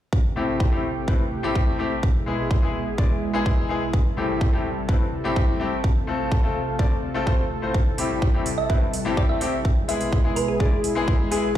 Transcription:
0.13 analog synth pad C3 A3 E4 G4, kick
0.36 grand piano A2 A3 C4 E4 G4
0.60 kick
0.72 grand piano A2 A3 C4 E4 G4
1.07 grand piano A2 A3 C4 E4 B4, kick
1.43 grand piano A2 A3 C4 E4 G4
1.55 kick
1.79 grand piano A3 C4 E4 G4
2.03 analog synth pad B2 G#3 G#4, kick
2.26 grand piano G#3 B3 E4 G#4
2.51 kick
2.62 grand piano G#3 B3 E4 G#4
2.98 grand piano G#3 B3 E4 D5, kick
3.33 grand piano G#3 B3 E4 G#4
3.46 kick
3.69 grand piano G#3 B3 E4 G#4
3.94 analog synth pad C3 G3 A4, kick
4.17 grand piano A2 A3 C4 E4 G4
4.41 kick
4.52 grand piano A2 A3 C4 E4 G4
4.88 grand piano A2 A3 C4 E4 B4, kick
5.24 grand piano A2 A3 C4 E4 G4
5.36 kick
5.60 grand piano A3 C4 E4 G4
5.84 analog synth pad A3 F4, kick
6.07 grand piano A3 C4 F4 A4
6.32 kick
6.43 grand piano A3 C4 F4 A4
6.79 grand piano A3 C4 F4 D5, kick
7.14 grand piano A3 C4 F4 A4
7.26 grand piano A3 C4 F4 C5, kick
7.62 grand piano A2 A3 C4 F4 C5
7.74 analog synth pad G3 E4, kick
7.98 grand piano A2 A3 C4 E4 G4, open hi-hat
8.22 kick
8.33 grand piano A2 A3 C4 E4 G4
8.46 open hi-hat
8.58 synth pluck E5
8.69 grand piano A2 A3 C4 E4 B4, kick
8.93 open hi-hat
9.05 grand piano A2 A3 C4 E4 G4
9.17 synth pluck D5, kick
9.29 synth pluck E5
9.41 grand piano A3 C4 E4 G4, open hi-hat
9.65 analog synth pad B2 G#3 G#4, kick
9.88 grand piano G#3 B3 E4 G#4, synth pluck E5, open hi-hat
10.01 open hi-hat
10.13 kick
10.24 grand piano G#3 B3 E4 G#4
10.36 synth pluck B4, open hi-hat
10.48 synth pluck G#4
10.60 grand piano G#3 B3 E4 D5, synth pluck G#4, kick
10.84 open hi-hat
10.95 grand piano G#3 B3 E4 G#4
11.08 kick
11.31 grand piano G#3 B3 E4 G#4, synth pluck G#4, open hi-hat

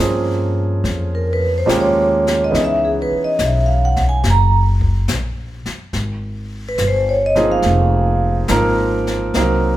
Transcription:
Already playing: grand piano F3 A#3 C4 C#4 A4
0.00 upright bass G2, grand piano G#4
0.84 upright bass F2, brush sweep, snare
1.15 vibraphone A#4
1.33 vibraphone B4
1.58 vibraphone C5
1.66 upright bass D#2, grand piano F3 G#3 A#3 C#4 G4, snare, hi-hat pedal
1.80 vibraphone C#5
2.27 snare
2.44 vibraphone D#5
2.50 upright bass C#2, grand piano E3 B3 C#4 D#4 G#4
2.54 brush sweep, snare
2.64 vibraphone E5
2.85 vibraphone G#4
3.02 vibraphone B4
3.12 muted upright bass stroke
3.24 vibraphone D#5
3.39 upright bass B1, snare, hi-hat pedal
3.46 vibraphone E5
3.66 vibraphone F5
3.85 vibraphone F#5
3.96 kick, snare
4.09 vibraphone G#5
4.24 upright bass F#1, brush sweep, snare
4.30 vibraphone A#5
4.81 kick
5.08 upright bass A#1, snare, hi-hat pedal
5.66 muted upright bass stroke, snare
5.93 upright bass G#1, brush sweep, snare
6.69 vibraphone B4
6.78 upright bass G1, snare, hi-hat pedal
6.88 vibraphone C5
7.09 vibraphone C#5
7.26 vibraphone D#5
7.36 grand piano F3 A#3 C4 D#4 G#4, snare
7.52 vibraphone F5
7.62 upright bass F1, brush sweep, snare
8.48 upright bass G#1, grand piano F3 A#3 C4 D#4 A#4, snare, hi-hat pedal
9.07 snare
9.34 upright bass C2, grand piano F#3 A#3 C4 D#4 A#4, brush sweep, snare

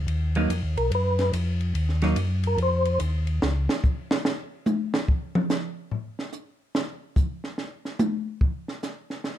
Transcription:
0.07 tonewheel organ D#2, ride
0.35 hollow-body jazz guitar F#3 A#3 D#4, ride
0.49 tonewheel organ F2, hi-hat pedal, ride
0.63 tonewheel organ D#2
0.77 tonewheel organ B1 A#4, ride
0.90 tonewheel organ F#2, ride
0.95 tonewheel organ B4
1.19 snare, ride
1.33 tonewheel organ F2, hi-hat pedal, ride
1.61 ride
1.74 tonewheel organ D#2, ride
1.89 snare
2.02 hollow-body jazz guitar F#3 A#3 D#4, snare, ride
2.16 tonewheel organ F#2, hi-hat pedal, ride
2.43 tonewheel organ A#4, ride
2.58 tonewheel organ F2, ride
2.62 tonewheel organ C5
2.85 ride
3.00 tonewheel organ D#2, hi-hat pedal, ride
3.27 ride
3.42 tonewheel organ C#2, snare
3.69 snare
3.83 kick, hi-hat pedal
4.11 snare
4.25 snare
4.66 hi-hat pedal, high tom
4.94 snare
5.08 kick
5.35 mid tom
5.50 snare, hi-hat pedal
5.91 floor tom
6.19 snare
6.33 hi-hat pedal
6.75 snare
7.16 kick, hi-hat pedal
7.44 snare
7.58 snare
7.85 snare
7.99 hi-hat pedal, high tom
8.41 kick
8.68 snare
8.83 snare, hi-hat pedal
9.10 snare
9.24 snare

